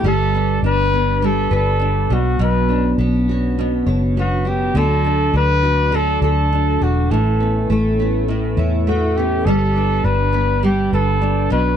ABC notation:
X:1
M:4/4
L:1/8
Q:"Swing 16ths" 1/4=102
K:Glyd
V:1 name="Trumpet"
A2 B2 A A2 F | B2 z4 F G | A2 B2 A A2 F | A2 z4 F G |
A2 B2 G A2 B |]
V:2 name="Nylon-string guitar"
G, D D B, G, B D B,, | B,, D B, F B,, c B, F | D, D D F D, A D F | A,, C A, B, A,, E A, B, |
G, D D B, G, B D B,, |]
V:3 name="Clean electric guitar"
G, B, D B, G, D G, F, | F, C D C F, D F, D | F, A, D A, F, D F, D | E, B, C B, E, C E, C |
G, B, D B, G, D G, F, |]
V:4 name="Fingered electric bass" clef=bass
G,,,2 G,,,3 G,,,2 B,,, | B,,,2 B,,,3 F,,,3 | D,,2 D,,3 D,,2 E,,, | A,,,2 A,,,3 E,,3 |
G,,,2 G,,,3 G,,,2 B,,, |]